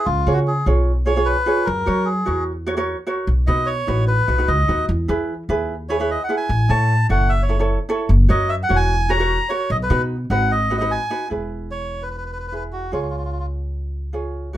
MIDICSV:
0, 0, Header, 1, 4, 480
1, 0, Start_track
1, 0, Key_signature, 4, "major"
1, 0, Tempo, 402145
1, 82, Time_signature, 4, 2, 24, 8
1, 17391, End_track
2, 0, Start_track
2, 0, Title_t, "Melodica"
2, 0, Program_c, 0, 22
2, 63, Note_on_c, 0, 65, 83
2, 395, Note_on_c, 0, 66, 80
2, 402, Note_off_c, 0, 65, 0
2, 469, Note_off_c, 0, 66, 0
2, 567, Note_on_c, 0, 68, 73
2, 788, Note_off_c, 0, 68, 0
2, 1265, Note_on_c, 0, 73, 96
2, 1496, Note_on_c, 0, 71, 98
2, 1521, Note_off_c, 0, 73, 0
2, 1967, Note_on_c, 0, 70, 86
2, 2003, Note_off_c, 0, 71, 0
2, 2451, Note_on_c, 0, 68, 70
2, 2478, Note_off_c, 0, 70, 0
2, 2910, Note_off_c, 0, 68, 0
2, 4141, Note_on_c, 0, 75, 89
2, 4371, Note_on_c, 0, 73, 88
2, 4397, Note_off_c, 0, 75, 0
2, 4829, Note_off_c, 0, 73, 0
2, 4865, Note_on_c, 0, 71, 82
2, 5345, Note_on_c, 0, 75, 89
2, 5365, Note_off_c, 0, 71, 0
2, 5796, Note_off_c, 0, 75, 0
2, 7034, Note_on_c, 0, 73, 81
2, 7280, Note_off_c, 0, 73, 0
2, 7289, Note_on_c, 0, 75, 84
2, 7430, Note_off_c, 0, 75, 0
2, 7444, Note_on_c, 0, 78, 86
2, 7587, Note_off_c, 0, 78, 0
2, 7604, Note_on_c, 0, 80, 90
2, 7992, Note_on_c, 0, 81, 104
2, 8009, Note_off_c, 0, 80, 0
2, 8437, Note_off_c, 0, 81, 0
2, 8485, Note_on_c, 0, 78, 89
2, 8705, Note_on_c, 0, 76, 91
2, 8724, Note_off_c, 0, 78, 0
2, 8864, Note_on_c, 0, 73, 68
2, 8871, Note_off_c, 0, 76, 0
2, 9089, Note_off_c, 0, 73, 0
2, 9902, Note_on_c, 0, 75, 90
2, 10134, Note_on_c, 0, 76, 91
2, 10151, Note_off_c, 0, 75, 0
2, 10208, Note_off_c, 0, 76, 0
2, 10301, Note_on_c, 0, 78, 93
2, 10457, Note_on_c, 0, 80, 101
2, 10468, Note_off_c, 0, 78, 0
2, 10860, Note_on_c, 0, 82, 109
2, 10873, Note_off_c, 0, 80, 0
2, 11329, Note_on_c, 0, 73, 88
2, 11356, Note_off_c, 0, 82, 0
2, 11584, Note_off_c, 0, 73, 0
2, 11590, Note_on_c, 0, 75, 89
2, 11660, Note_off_c, 0, 75, 0
2, 11732, Note_on_c, 0, 71, 81
2, 11960, Note_off_c, 0, 71, 0
2, 12302, Note_on_c, 0, 78, 92
2, 12547, Note_on_c, 0, 75, 91
2, 12550, Note_off_c, 0, 78, 0
2, 12849, Note_off_c, 0, 75, 0
2, 12867, Note_on_c, 0, 75, 84
2, 13024, Note_on_c, 0, 80, 90
2, 13030, Note_off_c, 0, 75, 0
2, 13470, Note_off_c, 0, 80, 0
2, 13980, Note_on_c, 0, 73, 81
2, 14353, Note_on_c, 0, 71, 69
2, 14360, Note_off_c, 0, 73, 0
2, 14433, Note_off_c, 0, 71, 0
2, 14451, Note_on_c, 0, 71, 52
2, 14517, Note_off_c, 0, 71, 0
2, 14534, Note_on_c, 0, 71, 62
2, 14613, Note_off_c, 0, 71, 0
2, 14630, Note_on_c, 0, 71, 52
2, 14695, Note_off_c, 0, 71, 0
2, 14713, Note_on_c, 0, 71, 66
2, 14779, Note_off_c, 0, 71, 0
2, 14797, Note_on_c, 0, 71, 54
2, 14876, Note_off_c, 0, 71, 0
2, 14893, Note_on_c, 0, 71, 65
2, 14970, Note_off_c, 0, 71, 0
2, 14988, Note_on_c, 0, 71, 61
2, 15081, Note_off_c, 0, 71, 0
2, 15189, Note_on_c, 0, 66, 63
2, 15413, Note_off_c, 0, 66, 0
2, 15434, Note_on_c, 0, 65, 62
2, 15519, Note_off_c, 0, 65, 0
2, 15537, Note_on_c, 0, 65, 44
2, 15614, Note_off_c, 0, 65, 0
2, 15634, Note_on_c, 0, 65, 54
2, 15707, Note_off_c, 0, 65, 0
2, 15729, Note_on_c, 0, 65, 50
2, 15794, Note_off_c, 0, 65, 0
2, 15812, Note_on_c, 0, 65, 56
2, 15884, Note_off_c, 0, 65, 0
2, 15902, Note_on_c, 0, 65, 52
2, 15972, Note_off_c, 0, 65, 0
2, 15990, Note_on_c, 0, 65, 54
2, 16069, Note_off_c, 0, 65, 0
2, 17391, End_track
3, 0, Start_track
3, 0, Title_t, "Ukulele"
3, 0, Program_c, 1, 24
3, 317, Note_on_c, 1, 65, 62
3, 325, Note_on_c, 1, 68, 57
3, 331, Note_on_c, 1, 73, 72
3, 610, Note_off_c, 1, 65, 0
3, 614, Note_off_c, 1, 68, 0
3, 617, Note_off_c, 1, 73, 0
3, 789, Note_on_c, 1, 65, 64
3, 799, Note_on_c, 1, 68, 51
3, 801, Note_on_c, 1, 73, 73
3, 1087, Note_off_c, 1, 65, 0
3, 1088, Note_off_c, 1, 68, 0
3, 1092, Note_off_c, 1, 73, 0
3, 1261, Note_on_c, 1, 65, 66
3, 1267, Note_on_c, 1, 68, 61
3, 1276, Note_on_c, 1, 73, 65
3, 1347, Note_off_c, 1, 65, 0
3, 1350, Note_off_c, 1, 68, 0
3, 1352, Note_off_c, 1, 73, 0
3, 1390, Note_on_c, 1, 65, 64
3, 1394, Note_on_c, 1, 68, 56
3, 1399, Note_on_c, 1, 73, 75
3, 1614, Note_off_c, 1, 65, 0
3, 1614, Note_off_c, 1, 68, 0
3, 1618, Note_off_c, 1, 73, 0
3, 1743, Note_on_c, 1, 65, 63
3, 1751, Note_on_c, 1, 68, 67
3, 1762, Note_on_c, 1, 73, 64
3, 1992, Note_off_c, 1, 65, 0
3, 1996, Note_off_c, 1, 68, 0
3, 1998, Note_off_c, 1, 73, 0
3, 2220, Note_on_c, 1, 66, 70
3, 2231, Note_on_c, 1, 73, 71
3, 2238, Note_on_c, 1, 70, 50
3, 2520, Note_off_c, 1, 66, 0
3, 2526, Note_off_c, 1, 70, 0
3, 2526, Note_off_c, 1, 73, 0
3, 2693, Note_on_c, 1, 66, 67
3, 2702, Note_on_c, 1, 73, 68
3, 2708, Note_on_c, 1, 70, 56
3, 2997, Note_off_c, 1, 66, 0
3, 3001, Note_off_c, 1, 70, 0
3, 3001, Note_off_c, 1, 73, 0
3, 3181, Note_on_c, 1, 66, 87
3, 3191, Note_on_c, 1, 70, 66
3, 3193, Note_on_c, 1, 73, 91
3, 3267, Note_off_c, 1, 66, 0
3, 3268, Note_off_c, 1, 70, 0
3, 3271, Note_off_c, 1, 73, 0
3, 3303, Note_on_c, 1, 66, 82
3, 3308, Note_on_c, 1, 70, 72
3, 3314, Note_on_c, 1, 73, 94
3, 3529, Note_off_c, 1, 66, 0
3, 3531, Note_off_c, 1, 70, 0
3, 3534, Note_off_c, 1, 73, 0
3, 3659, Note_on_c, 1, 66, 79
3, 3666, Note_on_c, 1, 73, 88
3, 3673, Note_on_c, 1, 70, 62
3, 3909, Note_off_c, 1, 66, 0
3, 3912, Note_off_c, 1, 73, 0
3, 3913, Note_off_c, 1, 70, 0
3, 4144, Note_on_c, 1, 63, 68
3, 4154, Note_on_c, 1, 71, 75
3, 4157, Note_on_c, 1, 66, 52
3, 4442, Note_off_c, 1, 63, 0
3, 4444, Note_off_c, 1, 66, 0
3, 4446, Note_off_c, 1, 71, 0
3, 4620, Note_on_c, 1, 63, 66
3, 4629, Note_on_c, 1, 66, 58
3, 4635, Note_on_c, 1, 71, 73
3, 4918, Note_off_c, 1, 63, 0
3, 4923, Note_off_c, 1, 66, 0
3, 4926, Note_off_c, 1, 71, 0
3, 5102, Note_on_c, 1, 63, 64
3, 5111, Note_on_c, 1, 66, 62
3, 5117, Note_on_c, 1, 71, 77
3, 5185, Note_off_c, 1, 63, 0
3, 5189, Note_off_c, 1, 66, 0
3, 5192, Note_off_c, 1, 71, 0
3, 5230, Note_on_c, 1, 63, 68
3, 5237, Note_on_c, 1, 66, 62
3, 5246, Note_on_c, 1, 71, 66
3, 5450, Note_off_c, 1, 63, 0
3, 5455, Note_off_c, 1, 66, 0
3, 5456, Note_off_c, 1, 71, 0
3, 5584, Note_on_c, 1, 63, 59
3, 5595, Note_on_c, 1, 66, 54
3, 5596, Note_on_c, 1, 71, 72
3, 5830, Note_off_c, 1, 63, 0
3, 5832, Note_off_c, 1, 66, 0
3, 5835, Note_off_c, 1, 71, 0
3, 6068, Note_on_c, 1, 64, 75
3, 6075, Note_on_c, 1, 71, 82
3, 6078, Note_on_c, 1, 68, 62
3, 6361, Note_off_c, 1, 64, 0
3, 6364, Note_off_c, 1, 68, 0
3, 6365, Note_off_c, 1, 71, 0
3, 6553, Note_on_c, 1, 64, 77
3, 6561, Note_on_c, 1, 71, 83
3, 6564, Note_on_c, 1, 68, 59
3, 6843, Note_off_c, 1, 64, 0
3, 6846, Note_off_c, 1, 68, 0
3, 6848, Note_off_c, 1, 71, 0
3, 7037, Note_on_c, 1, 64, 64
3, 7045, Note_on_c, 1, 71, 79
3, 7048, Note_on_c, 1, 68, 58
3, 7110, Note_off_c, 1, 64, 0
3, 7114, Note_off_c, 1, 68, 0
3, 7115, Note_off_c, 1, 71, 0
3, 7158, Note_on_c, 1, 64, 74
3, 7168, Note_on_c, 1, 68, 56
3, 7170, Note_on_c, 1, 71, 74
3, 7373, Note_off_c, 1, 64, 0
3, 7375, Note_off_c, 1, 68, 0
3, 7379, Note_off_c, 1, 71, 0
3, 7506, Note_on_c, 1, 64, 69
3, 7517, Note_on_c, 1, 68, 57
3, 7517, Note_on_c, 1, 71, 78
3, 7750, Note_off_c, 1, 64, 0
3, 7751, Note_off_c, 1, 68, 0
3, 7754, Note_off_c, 1, 71, 0
3, 7983, Note_on_c, 1, 64, 66
3, 7994, Note_on_c, 1, 69, 53
3, 7997, Note_on_c, 1, 73, 76
3, 8278, Note_off_c, 1, 64, 0
3, 8280, Note_off_c, 1, 69, 0
3, 8284, Note_off_c, 1, 73, 0
3, 8464, Note_on_c, 1, 64, 66
3, 8475, Note_on_c, 1, 69, 55
3, 8475, Note_on_c, 1, 73, 78
3, 8757, Note_off_c, 1, 64, 0
3, 8760, Note_off_c, 1, 69, 0
3, 8762, Note_off_c, 1, 73, 0
3, 8937, Note_on_c, 1, 64, 70
3, 8946, Note_on_c, 1, 69, 57
3, 8947, Note_on_c, 1, 73, 74
3, 9018, Note_off_c, 1, 64, 0
3, 9021, Note_off_c, 1, 69, 0
3, 9023, Note_off_c, 1, 73, 0
3, 9065, Note_on_c, 1, 64, 72
3, 9073, Note_on_c, 1, 69, 62
3, 9077, Note_on_c, 1, 73, 80
3, 9285, Note_off_c, 1, 64, 0
3, 9286, Note_off_c, 1, 69, 0
3, 9290, Note_off_c, 1, 73, 0
3, 9415, Note_on_c, 1, 64, 86
3, 9423, Note_on_c, 1, 69, 74
3, 9424, Note_on_c, 1, 73, 90
3, 9662, Note_off_c, 1, 64, 0
3, 9663, Note_off_c, 1, 69, 0
3, 9665, Note_off_c, 1, 73, 0
3, 9888, Note_on_c, 1, 66, 68
3, 9896, Note_on_c, 1, 73, 76
3, 9897, Note_on_c, 1, 70, 55
3, 10187, Note_off_c, 1, 66, 0
3, 10190, Note_off_c, 1, 70, 0
3, 10191, Note_off_c, 1, 73, 0
3, 10370, Note_on_c, 1, 66, 68
3, 10376, Note_on_c, 1, 70, 62
3, 10381, Note_on_c, 1, 73, 77
3, 10668, Note_off_c, 1, 66, 0
3, 10670, Note_off_c, 1, 70, 0
3, 10673, Note_off_c, 1, 73, 0
3, 10851, Note_on_c, 1, 66, 72
3, 10856, Note_on_c, 1, 70, 68
3, 10864, Note_on_c, 1, 73, 78
3, 10933, Note_off_c, 1, 66, 0
3, 10936, Note_off_c, 1, 70, 0
3, 10940, Note_off_c, 1, 73, 0
3, 10976, Note_on_c, 1, 66, 77
3, 10983, Note_on_c, 1, 70, 67
3, 10989, Note_on_c, 1, 73, 80
3, 11197, Note_off_c, 1, 66, 0
3, 11201, Note_off_c, 1, 70, 0
3, 11204, Note_off_c, 1, 73, 0
3, 11337, Note_on_c, 1, 66, 67
3, 11345, Note_on_c, 1, 73, 77
3, 11350, Note_on_c, 1, 70, 60
3, 11580, Note_off_c, 1, 66, 0
3, 11585, Note_off_c, 1, 70, 0
3, 11585, Note_off_c, 1, 73, 0
3, 11818, Note_on_c, 1, 63, 73
3, 11823, Note_on_c, 1, 66, 61
3, 11830, Note_on_c, 1, 71, 80
3, 12111, Note_off_c, 1, 63, 0
3, 12113, Note_off_c, 1, 66, 0
3, 12117, Note_off_c, 1, 71, 0
3, 12296, Note_on_c, 1, 63, 69
3, 12305, Note_on_c, 1, 66, 66
3, 12310, Note_on_c, 1, 71, 77
3, 12590, Note_off_c, 1, 63, 0
3, 12594, Note_off_c, 1, 66, 0
3, 12597, Note_off_c, 1, 71, 0
3, 12774, Note_on_c, 1, 63, 73
3, 12784, Note_on_c, 1, 71, 83
3, 12785, Note_on_c, 1, 66, 60
3, 12854, Note_off_c, 1, 63, 0
3, 12857, Note_off_c, 1, 66, 0
3, 12859, Note_off_c, 1, 71, 0
3, 12900, Note_on_c, 1, 63, 79
3, 12909, Note_on_c, 1, 66, 55
3, 12911, Note_on_c, 1, 71, 80
3, 13120, Note_off_c, 1, 63, 0
3, 13121, Note_off_c, 1, 66, 0
3, 13125, Note_off_c, 1, 71, 0
3, 13252, Note_on_c, 1, 63, 74
3, 13263, Note_on_c, 1, 66, 52
3, 13263, Note_on_c, 1, 71, 78
3, 13481, Note_off_c, 1, 63, 0
3, 13485, Note_on_c, 1, 64, 46
3, 13492, Note_off_c, 1, 66, 0
3, 13492, Note_off_c, 1, 71, 0
3, 13497, Note_on_c, 1, 68, 46
3, 13507, Note_on_c, 1, 71, 52
3, 14910, Note_off_c, 1, 64, 0
3, 14916, Note_off_c, 1, 68, 0
3, 14920, Note_off_c, 1, 71, 0
3, 14944, Note_on_c, 1, 64, 36
3, 14955, Note_on_c, 1, 71, 39
3, 14957, Note_on_c, 1, 68, 30
3, 15412, Note_off_c, 1, 68, 0
3, 15413, Note_off_c, 1, 64, 0
3, 15418, Note_on_c, 1, 65, 51
3, 15426, Note_on_c, 1, 68, 47
3, 15433, Note_off_c, 1, 71, 0
3, 15435, Note_on_c, 1, 73, 56
3, 16842, Note_off_c, 1, 65, 0
3, 16846, Note_off_c, 1, 68, 0
3, 16851, Note_off_c, 1, 73, 0
3, 16865, Note_on_c, 1, 65, 46
3, 16871, Note_on_c, 1, 68, 41
3, 16878, Note_on_c, 1, 73, 48
3, 17341, Note_off_c, 1, 65, 0
3, 17346, Note_on_c, 1, 66, 60
3, 17355, Note_off_c, 1, 68, 0
3, 17355, Note_off_c, 1, 73, 0
3, 17391, Note_off_c, 1, 66, 0
3, 17391, End_track
4, 0, Start_track
4, 0, Title_t, "Upright bass"
4, 0, Program_c, 2, 32
4, 78, Note_on_c, 2, 37, 85
4, 278, Note_off_c, 2, 37, 0
4, 317, Note_on_c, 2, 49, 82
4, 715, Note_off_c, 2, 49, 0
4, 792, Note_on_c, 2, 35, 77
4, 1587, Note_off_c, 2, 35, 0
4, 1997, Note_on_c, 2, 42, 93
4, 2197, Note_off_c, 2, 42, 0
4, 2238, Note_on_c, 2, 54, 86
4, 2635, Note_off_c, 2, 54, 0
4, 2713, Note_on_c, 2, 40, 80
4, 3507, Note_off_c, 2, 40, 0
4, 3907, Note_on_c, 2, 35, 84
4, 4109, Note_off_c, 2, 35, 0
4, 4148, Note_on_c, 2, 47, 87
4, 4548, Note_off_c, 2, 47, 0
4, 4633, Note_on_c, 2, 33, 80
4, 5030, Note_off_c, 2, 33, 0
4, 5110, Note_on_c, 2, 35, 74
4, 5328, Note_off_c, 2, 35, 0
4, 5351, Note_on_c, 2, 37, 83
4, 5569, Note_off_c, 2, 37, 0
4, 5598, Note_on_c, 2, 39, 79
4, 5813, Note_off_c, 2, 39, 0
4, 5833, Note_on_c, 2, 40, 89
4, 6031, Note_off_c, 2, 40, 0
4, 6075, Note_on_c, 2, 52, 85
4, 6470, Note_off_c, 2, 52, 0
4, 6550, Note_on_c, 2, 39, 76
4, 7342, Note_off_c, 2, 39, 0
4, 7751, Note_on_c, 2, 33, 89
4, 7949, Note_off_c, 2, 33, 0
4, 7991, Note_on_c, 2, 45, 85
4, 8386, Note_off_c, 2, 45, 0
4, 8472, Note_on_c, 2, 30, 81
4, 9261, Note_off_c, 2, 30, 0
4, 9658, Note_on_c, 2, 30, 93
4, 9859, Note_off_c, 2, 30, 0
4, 9904, Note_on_c, 2, 42, 91
4, 10301, Note_off_c, 2, 42, 0
4, 10387, Note_on_c, 2, 28, 83
4, 11177, Note_off_c, 2, 28, 0
4, 11578, Note_on_c, 2, 35, 94
4, 11778, Note_off_c, 2, 35, 0
4, 11816, Note_on_c, 2, 47, 91
4, 12215, Note_off_c, 2, 47, 0
4, 12293, Note_on_c, 2, 32, 83
4, 13090, Note_off_c, 2, 32, 0
4, 13502, Note_on_c, 2, 28, 60
4, 15391, Note_off_c, 2, 28, 0
4, 15431, Note_on_c, 2, 37, 65
4, 17322, Note_off_c, 2, 37, 0
4, 17391, End_track
0, 0, End_of_file